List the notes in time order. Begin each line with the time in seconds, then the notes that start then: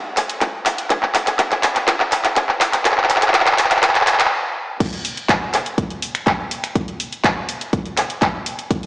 0.17 clap, open hi-hat
0.29 closed hi-hat
0.41 kick, clap, closed hi-hat
0.66 clap, open hi-hat
0.78 closed hi-hat
0.90 kick, clap, closed hi-hat
1.03 clap
1.15 clap, open hi-hat
1.27 clap, closed hi-hat
1.39 kick, clap, closed hi-hat
1.52 clap, closed hi-hat
1.63 clap, open hi-hat
1.76 clap, closed hi-hat
1.88 kick, clap, closed hi-hat
2.00 clap
2.12 clap, open hi-hat
2.25 clap, closed hi-hat
2.36 kick, clap, closed hi-hat
2.49 clap
2.61 clap, open hi-hat
2.73 clap, closed hi-hat
2.85 kick, clap, closed hi-hat
2.92 clap
2.98 clap
3.04 clap
3.10 clap, open hi-hat
3.16 clap
3.22 clap, closed hi-hat
3.28 clap
3.34 kick, clap, closed hi-hat
3.40 clap
3.47 clap, closed hi-hat
3.52 clap
3.58 clap, open hi-hat
3.65 clap
3.71 clap, closed hi-hat
3.77 clap
3.83 kick, clap, closed hi-hat
3.89 clap
3.95 clap, closed hi-hat
4.01 clap
4.07 clap, open hi-hat
4.13 clap
4.20 clap, closed hi-hat
4.26 clap
4.80 kick, closed hi-hat, crash
4.93 closed hi-hat
5.05 open hi-hat
5.17 closed hi-hat
5.29 kick, clap, closed hi-hat
5.54 clap, open hi-hat
5.66 closed hi-hat
5.78 kick, closed hi-hat
5.90 closed hi-hat
6.02 open hi-hat
6.15 finger snap, closed hi-hat
6.27 kick, clap, closed hi-hat
6.51 open hi-hat
6.64 finger snap, closed hi-hat
6.75 kick, closed hi-hat
6.88 closed hi-hat
7.00 open hi-hat
7.13 closed hi-hat
7.24 kick, clap, closed hi-hat
7.49 open hi-hat
7.61 closed hi-hat
7.73 kick, closed hi-hat
7.86 closed hi-hat
7.97 finger snap, clap, open hi-hat
8.10 closed hi-hat
8.22 kick, clap, closed hi-hat
8.46 open hi-hat
8.59 closed hi-hat
8.71 kick, closed hi-hat
8.83 closed hi-hat